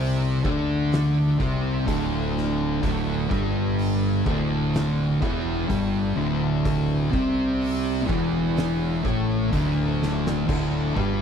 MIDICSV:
0, 0, Header, 1, 4, 480
1, 0, Start_track
1, 0, Tempo, 955414
1, 1421, Time_signature, 4, 2, 24, 8
1, 5635, End_track
2, 0, Start_track
2, 0, Title_t, "Distorted electric guitar"
2, 0, Program_c, 0, 30
2, 0, Note_on_c, 0, 48, 100
2, 0, Note_on_c, 0, 60, 101
2, 214, Note_off_c, 0, 48, 0
2, 217, Note_off_c, 0, 60, 0
2, 223, Note_on_c, 0, 50, 95
2, 228, Note_on_c, 0, 62, 111
2, 695, Note_off_c, 0, 50, 0
2, 697, Note_on_c, 0, 48, 98
2, 698, Note_off_c, 0, 62, 0
2, 702, Note_on_c, 0, 60, 112
2, 932, Note_off_c, 0, 48, 0
2, 934, Note_off_c, 0, 60, 0
2, 942, Note_on_c, 0, 38, 91
2, 944, Note_on_c, 0, 50, 116
2, 1412, Note_off_c, 0, 38, 0
2, 1414, Note_off_c, 0, 50, 0
2, 1418, Note_on_c, 0, 38, 106
2, 1420, Note_on_c, 0, 50, 101
2, 1652, Note_off_c, 0, 38, 0
2, 1653, Note_off_c, 0, 50, 0
2, 1656, Note_on_c, 0, 43, 85
2, 1661, Note_on_c, 0, 55, 97
2, 2131, Note_off_c, 0, 43, 0
2, 2133, Note_off_c, 0, 55, 0
2, 2144, Note_on_c, 0, 38, 101
2, 2146, Note_on_c, 0, 50, 107
2, 2615, Note_off_c, 0, 38, 0
2, 2616, Note_off_c, 0, 50, 0
2, 2621, Note_on_c, 0, 40, 97
2, 2623, Note_on_c, 0, 52, 110
2, 2853, Note_off_c, 0, 40, 0
2, 2854, Note_off_c, 0, 52, 0
2, 2857, Note_on_c, 0, 43, 89
2, 2862, Note_on_c, 0, 55, 109
2, 3091, Note_off_c, 0, 43, 0
2, 3094, Note_off_c, 0, 55, 0
2, 3098, Note_on_c, 0, 38, 99
2, 3102, Note_on_c, 0, 50, 111
2, 3572, Note_off_c, 0, 38, 0
2, 3574, Note_off_c, 0, 50, 0
2, 3583, Note_on_c, 0, 48, 91
2, 3588, Note_on_c, 0, 60, 105
2, 4064, Note_off_c, 0, 48, 0
2, 4064, Note_on_c, 0, 40, 94
2, 4068, Note_off_c, 0, 60, 0
2, 4068, Note_on_c, 0, 52, 92
2, 4536, Note_off_c, 0, 40, 0
2, 4538, Note_off_c, 0, 52, 0
2, 4545, Note_on_c, 0, 45, 86
2, 4549, Note_on_c, 0, 57, 109
2, 4776, Note_off_c, 0, 45, 0
2, 4778, Note_off_c, 0, 57, 0
2, 4788, Note_on_c, 0, 38, 87
2, 4790, Note_on_c, 0, 50, 95
2, 5255, Note_off_c, 0, 38, 0
2, 5259, Note_off_c, 0, 50, 0
2, 5261, Note_on_c, 0, 38, 93
2, 5264, Note_on_c, 0, 50, 110
2, 5495, Note_off_c, 0, 38, 0
2, 5497, Note_off_c, 0, 50, 0
2, 5506, Note_on_c, 0, 43, 99
2, 5512, Note_on_c, 0, 55, 100
2, 5635, Note_off_c, 0, 43, 0
2, 5635, Note_off_c, 0, 55, 0
2, 5635, End_track
3, 0, Start_track
3, 0, Title_t, "Fingered electric bass"
3, 0, Program_c, 1, 33
3, 0, Note_on_c, 1, 36, 97
3, 204, Note_off_c, 1, 36, 0
3, 222, Note_on_c, 1, 38, 107
3, 682, Note_off_c, 1, 38, 0
3, 704, Note_on_c, 1, 36, 100
3, 926, Note_off_c, 1, 36, 0
3, 939, Note_on_c, 1, 26, 103
3, 1400, Note_off_c, 1, 26, 0
3, 1421, Note_on_c, 1, 26, 91
3, 1644, Note_off_c, 1, 26, 0
3, 1661, Note_on_c, 1, 31, 105
3, 2121, Note_off_c, 1, 31, 0
3, 2140, Note_on_c, 1, 26, 96
3, 2600, Note_off_c, 1, 26, 0
3, 2621, Note_on_c, 1, 28, 93
3, 2844, Note_off_c, 1, 28, 0
3, 2862, Note_on_c, 1, 31, 97
3, 3085, Note_off_c, 1, 31, 0
3, 3100, Note_on_c, 1, 26, 94
3, 3560, Note_off_c, 1, 26, 0
3, 3581, Note_on_c, 1, 36, 108
3, 4041, Note_off_c, 1, 36, 0
3, 4063, Note_on_c, 1, 28, 100
3, 4523, Note_off_c, 1, 28, 0
3, 4545, Note_on_c, 1, 33, 90
3, 4767, Note_off_c, 1, 33, 0
3, 4786, Note_on_c, 1, 26, 104
3, 5244, Note_off_c, 1, 26, 0
3, 5266, Note_on_c, 1, 26, 103
3, 5488, Note_off_c, 1, 26, 0
3, 5508, Note_on_c, 1, 31, 91
3, 5635, Note_off_c, 1, 31, 0
3, 5635, End_track
4, 0, Start_track
4, 0, Title_t, "Drums"
4, 226, Note_on_c, 9, 36, 125
4, 276, Note_off_c, 9, 36, 0
4, 462, Note_on_c, 9, 46, 80
4, 471, Note_on_c, 9, 38, 117
4, 512, Note_off_c, 9, 46, 0
4, 521, Note_off_c, 9, 38, 0
4, 704, Note_on_c, 9, 36, 117
4, 755, Note_off_c, 9, 36, 0
4, 944, Note_on_c, 9, 36, 109
4, 944, Note_on_c, 9, 46, 68
4, 994, Note_off_c, 9, 36, 0
4, 995, Note_off_c, 9, 46, 0
4, 1192, Note_on_c, 9, 38, 38
4, 1243, Note_off_c, 9, 38, 0
4, 1423, Note_on_c, 9, 36, 116
4, 1423, Note_on_c, 9, 46, 67
4, 1473, Note_off_c, 9, 36, 0
4, 1473, Note_off_c, 9, 46, 0
4, 1663, Note_on_c, 9, 36, 123
4, 1713, Note_off_c, 9, 36, 0
4, 1902, Note_on_c, 9, 46, 64
4, 1952, Note_off_c, 9, 46, 0
4, 2142, Note_on_c, 9, 36, 124
4, 2192, Note_off_c, 9, 36, 0
4, 2381, Note_on_c, 9, 46, 66
4, 2391, Note_on_c, 9, 38, 116
4, 2432, Note_off_c, 9, 46, 0
4, 2441, Note_off_c, 9, 38, 0
4, 2624, Note_on_c, 9, 36, 118
4, 2674, Note_off_c, 9, 36, 0
4, 2862, Note_on_c, 9, 46, 61
4, 2863, Note_on_c, 9, 36, 113
4, 2912, Note_off_c, 9, 46, 0
4, 2913, Note_off_c, 9, 36, 0
4, 3341, Note_on_c, 9, 46, 68
4, 3343, Note_on_c, 9, 36, 115
4, 3391, Note_off_c, 9, 46, 0
4, 3393, Note_off_c, 9, 36, 0
4, 3584, Note_on_c, 9, 36, 116
4, 3634, Note_off_c, 9, 36, 0
4, 3826, Note_on_c, 9, 46, 71
4, 3876, Note_off_c, 9, 46, 0
4, 4066, Note_on_c, 9, 36, 127
4, 4116, Note_off_c, 9, 36, 0
4, 4304, Note_on_c, 9, 46, 67
4, 4313, Note_on_c, 9, 38, 112
4, 4354, Note_off_c, 9, 46, 0
4, 4363, Note_off_c, 9, 38, 0
4, 4546, Note_on_c, 9, 36, 117
4, 4596, Note_off_c, 9, 36, 0
4, 4786, Note_on_c, 9, 46, 68
4, 4787, Note_on_c, 9, 36, 108
4, 4837, Note_off_c, 9, 36, 0
4, 4837, Note_off_c, 9, 46, 0
4, 5038, Note_on_c, 9, 38, 66
4, 5088, Note_off_c, 9, 38, 0
4, 5160, Note_on_c, 9, 38, 103
4, 5211, Note_off_c, 9, 38, 0
4, 5269, Note_on_c, 9, 36, 125
4, 5273, Note_on_c, 9, 49, 112
4, 5320, Note_off_c, 9, 36, 0
4, 5323, Note_off_c, 9, 49, 0
4, 5509, Note_on_c, 9, 36, 104
4, 5559, Note_off_c, 9, 36, 0
4, 5635, End_track
0, 0, End_of_file